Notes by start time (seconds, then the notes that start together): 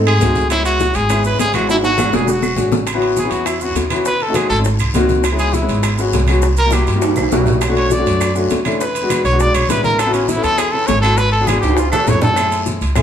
Already playing: G#2 A4
0.06 G#4, high bongo, high conga, high timbale, claves
0.20 C#2 A3 C4 D#4 F#4, high bongo, low bongo, high conga, high timbale, short guiro, maracas
0.35 high bongo, high conga, short guiro, maracas
0.50 G#3 B3 C#4 E4, high bongo, high conga, high timbale, long guiro, claves, maracas
0.65 F#4, high conga, high timbale, maracas
0.79 high bongo, high conga, short guiro, maracas
0.94 G#1 G#4, high bongo, high conga, high timbale, short guiro, maracas
1.09 G#3 B3 C#4 E4, high bongo, high conga, high timbale, long guiro, claves, maracas
1.24 B4, high bongo, high conga, maracas
1.39 G#1 G#4, high bongo, low bongo, high conga, high timbale, low timbale, short guiro, maracas
1.53 G#3 B3 C#4 E4 F#4, high bongo, high conga, high timbale, short guiro, claves, maracas
1.68 G#3 B3 D4 E4 F#4, high bongo, high conga, high timbale, long guiro, maracas
1.84 F#4, high bongo, high conga, high timbale, maracas
1.98 G#3 B3 D4 F#4, high bongo, high conga, low timbale, short guiro, claves, maracas
2.12 E1 G#4, low bongo, high conga, low timbale, short guiro, maracas
2.20 G#3 B3 D4 F#4
2.27 F#4, low bongo, high conga, long guiro, maracas
2.42 low bongo, high conga, claves, maracas
2.56 A1 G#3 C#4 D4 F#4, low bongo, high conga, short guiro, maracas
2.72 low bongo, high conga, low timbale, short guiro, maracas
2.86 high bongo, high conga, high timbale, long guiro, claves, maracas
2.94 B3 C#4 E4 F#4
3.02 high conga, high timbale
3.16 G#4, high bongo, high conga, short guiro, maracas
3.24 B3 C#4 E4 F#4
3.31 E2 F#4, high bongo, high timbale, short guiro, maracas
3.46 E4, high bongo, high conga, high timbale, long guiro, claves, maracas
3.60 B3 C#4 E4 F#4, high bongo, high conga, maracas
3.75 D#2, high bongo, low bongo, high conga, high timbale, short guiro, maracas
3.90 B3 C#4 E4 F#4, high bongo, high conga, high timbale, short guiro, claves, maracas
4.05 B4, high bongo, high conga, long guiro, maracas
4.20 A4, high conga, high timbale
4.28 A3 C#4 D#4 F#4
4.34 G#4, high bongo, high conga, high timbale, short guiro, claves, maracas
4.50 G#1 A4, high bongo, high conga, high timbale, short guiro, maracas
4.58 A3 C#4 D#4 A4
4.64 high bongo, high conga, long guiro, maracas
4.79 C2, high bongo, high conga, high timbale, claves, maracas
4.94 C#2 A#3 C4 D#4 F#4, high bongo, low bongo, high conga, high timbale, low timbale, short guiro, maracas
5.09 high bongo, high conga, short guiro, maracas
5.24 high bongo, high conga, high timbale, long guiro, claves, maracas
5.32 G#3 B3 C#4 E4
5.38 G#4, high conga, high timbale, maracas
5.53 E4, high bongo, high conga, short guiro, maracas
5.61 G#3 B3 C#4 E4
5.68 G#1, high bongo, high conga, high timbale, short guiro, maracas
5.83 high bongo, high conga, high timbale, long guiro, claves, maracas
5.98 G#3 B3 C#4 F#4, high bongo, high conga, maracas
6.13 C2, high bongo, low bongo, high conga, high timbale, low timbale, short guiro, maracas
6.27 G#3 B3 C#4 F#4, high bongo, high conga, high timbale, short guiro, claves, maracas
6.42 high bongo, high conga, long guiro, maracas
6.56 A#4, high conga, high timbale, maracas
6.66 G3 A#3 E4 F#4
6.71 G4, high bongo, high conga, high timbale, short guiro, claves, maracas
6.87 G2, high bongo, high conga, high timbale, short guiro, maracas
6.95 G3 A#3 E4 F#4
7.01 high bongo, high conga, high timbale, long guiro, maracas
7.16 C2, high bongo, high conga, high timbale, claves, maracas
7.31 B1 G3 A#3 E4 F#4, high bongo, low bongo, low timbale, short guiro, maracas
7.46 high bongo, low conga, low timbale, short guiro, maracas
7.61 high bongo, high conga, high timbale, long guiro, claves, maracas
7.68 A3 C#4 D4 F#4
7.76 C#5, high conga, high timbale
7.90 D5, high bongo, high conga, short guiro, maracas
7.98 A3 C#4 D4 F#4
8.06 F#2, high bongo, high conga, high timbale, short guiro, maracas
8.21 high bongo, high conga, high timbale, long guiro, claves, maracas
8.35 A3 C#4 D4 F#4, high bongo, high conga, maracas
8.50 E2, high bongo, low bongo, high conga, high timbale, short guiro, maracas
8.64 A3 C#4 D4 E4, high bongo, high conga, high timbale, short guiro, claves, maracas
8.81 B4, high bongo, high conga, long guiro, maracas
8.95 high conga, high timbale, maracas
9.02 G#3 B3 D4 F#4
9.10 high bongo, high conga, high timbale, short guiro, claves, maracas
9.24 B1 C#5, high bongo, high conga, high timbale, short guiro, maracas
9.32 G#3 B3 D4 F#4
9.40 D5, high bongo, high conga, long guiro, maracas
9.54 B1 C#5, high bongo, high conga, high timbale, claves, maracas
9.68 A1 G#3 B3 D4 E4 B4, high bongo, low bongo, high conga, high timbale, short guiro, maracas
9.84 A#4, high bongo, high conga, short guiro, maracas
9.98 A4, high bongo, high conga, high timbale, long guiro, claves, maracas
10.06 B3 C#4 E4 F#4
10.14 C#4, high conga, high timbale, maracas
10.28 E4, high bongo, high conga, short guiro, maracas
10.36 B3 C#4 E4 A4
10.43 E2 A4, high bongo, high conga, high timbale, short guiro, maracas
10.58 G#4, high bongo, high conga, high timbale, long guiro, claves, maracas
10.72 B3 C#4 E4 G#4 A4, high bongo, high conga
10.87 G#1 C#5, high bongo, low bongo, high conga, high timbale, low timbale, short guiro, maracas
11.02 B3 C#4 E4 F#4 A4, high bongo, high timbale, short guiro, claves, maracas
11.17 B4, high bongo, high conga, long guiro, maracas
11.32 A4, high conga, high timbale
11.40 B3 D4 F#4 G#4
11.47 G#4, high bongo, high conga, high timbale, short guiro, claves, maracas
11.61 C#2 G4, high conga, high timbale, short guiro, maracas
11.69 B3 D4 F#4 G#4
11.77 F4, high bongo, high conga, high timbale, long guiro, maracas
11.92 E2 A4, high bongo, high conga, low timbale, claves, maracas
12.07 F#2 B3 E4 F4 A4 C#5, high bongo, low bongo, low conga, low timbale, short guiro, maracas
12.21 A4, high bongo, low conga, low timbale, short guiro, maracas
12.36 A3 C#4 E4 G#4, high bongo, high conga, high timbale, long guiro, claves, maracas
12.52 high conga, high timbale, maracas
12.66 high bongo, high conga, short guiro, maracas
12.81 C#2, high bongo, high conga, high timbale, short guiro, maracas
12.95 A3 C#4 E4 G#4, high bongo, high conga, low conga, high timbale, long guiro, claves, maracas